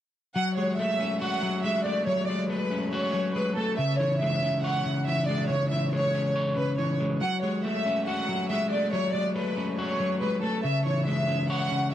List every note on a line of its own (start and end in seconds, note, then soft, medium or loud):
0.36 1.41 F#3 medium
0.36 0.56 F#5 loud
0.57 1.63 G#3 medium
0.57 0.77 C#5 medium
0.78 1.84 A3 medium
0.78 1.19 E5 medium
1.00 2.07 C#4 medium
1.21 2.29 F#4 loud
1.21 1.62 F#5 medium
1.43 2.06 F#3 medium
1.64 2.27 G#3 medium
1.64 1.84 E5 medium
1.85 2.49 A3 medium
1.85 2.06 D5 medium
2.07 3.13 F#3 loud
2.07 2.27 C#5 loud
2.28 3.34 G#3 medium
2.28 2.49 D5 medium
2.50 3.56 A3 medium
2.50 2.90 B4 medium
2.71 3.78 C#4 medium
2.93 3.78 F#4 loud
2.93 3.33 C#5 medium
3.14 3.78 F#3 medium
3.35 3.57 G#3 medium
3.35 3.56 B4 medium
3.57 3.78 A3 medium
3.57 3.77 A4 medium
3.78 4.84 C#3 medium
3.78 3.99 E5 medium
4.00 5.06 E3 medium
4.00 4.20 C#5 medium
4.21 5.27 G#3 medium
4.21 4.62 E5 medium
4.43 5.50 C#4 medium
4.64 5.71 C#5 loud
4.64 5.04 F#5 medium
4.86 5.49 C#3 medium
5.07 5.70 E3 medium
5.07 5.27 E5 medium
5.28 5.92 G#3 medium
5.28 5.49 D5 medium
5.50 6.56 C#3 medium
5.50 5.70 C#5 medium
5.71 6.77 E3 medium
5.71 5.91 E5 medium
5.93 6.99 G#3 medium
5.93 6.33 C#5 loud
6.14 7.21 C#4 medium
6.36 7.21 C#5 medium
6.57 7.21 C#3 medium
6.57 6.77 B4 medium
6.78 7.21 E3 medium
6.78 6.99 C#5 medium
7.00 7.21 G#3 medium
7.21 8.28 F#3 medium
7.21 7.42 F#5 loud
7.43 8.49 G#3 medium
7.43 7.63 C#5 medium
7.64 8.70 A3 medium
7.64 8.04 E5 medium
7.86 8.93 C#4 medium
8.07 9.14 F#4 loud
8.07 8.47 F#5 medium
8.29 8.92 F#3 medium
8.50 9.13 G#3 medium
8.50 8.70 E5 medium
8.71 9.34 A3 medium
8.71 8.91 D5 medium
8.93 9.99 F#3 loud
8.93 9.13 C#5 loud
9.14 10.20 G#3 medium
9.14 9.34 D5 medium
9.35 10.42 A3 medium
9.35 9.76 B4 medium
9.57 10.64 C#4 medium
9.78 10.64 F#4 loud
9.78 10.19 C#5 medium
10.00 10.64 F#3 medium
10.21 10.42 G#3 medium
10.21 10.41 B4 medium
10.43 10.64 A3 medium
10.43 10.63 A4 medium
10.64 11.70 C#3 medium
10.64 10.84 E5 medium
10.85 11.92 E3 medium
10.85 11.06 C#5 medium
11.07 11.94 G#3 medium
11.07 11.47 E5 medium
11.28 11.94 C#4 medium
11.50 11.94 C#5 loud
11.50 11.90 F#5 medium
11.71 11.94 C#3 medium